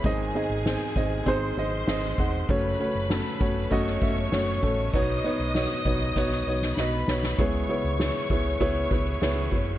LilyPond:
<<
  \new Staff \with { instrumentName = "Violin section" } { \time 4/4 \key cis \minor \tempo 4 = 98 <gis' gis''>2 <bis' bis''>2 | <b' b''>2 <cis'' cis'''>2 | <dis'' dis'''>2. <b' b''>4 | <cis'' cis'''>1 | }
  \new Staff \with { instrumentName = "Upright piano" } { \time 4/4 \key cis \minor <bis dis' gis' dis''>8 <bis dis' gis' dis''>8 <bis dis' gis' bis'>8 <bis dis' gis' dis''>8 <bis dis' gis' bis'>8 <bis dis' gis' dis''>8 <bis dis' gis' dis''>8 <bis dis' gis' fis''>8 | <a cis' fis' cis''>8 <a cis' fis' cis''>8 <a cis' fis' a'>8 <a cis' fis' cis''>8 <a cis' fis' dis''>8 <a cis' fis' e''>8 <a cis' fis' cis''>8 <a cis' fis' a'>8 | <b dis' fis' cis''>8 <b dis' fis' cis''>8 <b dis' fis' cis''>8 <b dis' fis' cis''>8 <b dis' fis' cis''>8 <b dis' fis' cis''>8 <b dis' fis' dis''>8 <b dis' fis' cis''>8 | <b e' gis' cis''>8 <b e' gis' cis''>8 <b e' gis' cis''>8 <b e' gis' cis''>8 <b e' gis' cis''>8 <b e' gis' b'>8 <b e' gis' cis''>8 <b e' gis' cis''>8 | }
  \new Staff \with { instrumentName = "Upright piano" } { \clef bass \time 4/4 \key cis \minor <gis, dis>4. r2 r8 | cis4. r2 r8 | <b, fis>4. r2 r8 | <cis gis>4. r2 r8 | }
  \new Staff \with { instrumentName = "Fingered electric bass" } { \clef bass \time 4/4 \key cis \minor gis,,8 r16 gis,,8 r16 gis,,8 gis,,8 gis,,8 gis,,8 e,,8 | fis,,8 r16 fis,,8 r16 fis,,8 fis,,8 fis,,8 fis,,8 a,,8 | b,,8 r16 b,,8 r16 b,,8 b,,8 b,,8 b,,8 b,,8 | cis,8 r16 cis,8 r16 cis,8 cis,8 cis,8 cis,8 fis,,8 | }
  \new DrumStaff \with { instrumentName = "Drums" } \drummode { \time 4/4 <bd cymr>8 cymr8 <cymr sn>8 <bd cymr>8 <bd cymr>8 cymr8 <cymr sn>8 <bd cymr>8 | <bd cymr>8 cymr8 <cymr sn>8 <bd cymr>8 <bd cymr>16 sn16 <bd cymr>8 <cymr sn>8 <bd cymr>8 | <bd cymr>8 cymr8 <cymr sn>8 <bd cymr>8 <bd sn>16 sn8 sn16 sn8 sn16 sn16 | <hhp bd cymr>8 cymr8 <cymr sn>8 <bd cymr>8 <bd cymr>8 <bd cymr>8 <cymr sn>8 <bd cymr>8 | }
>>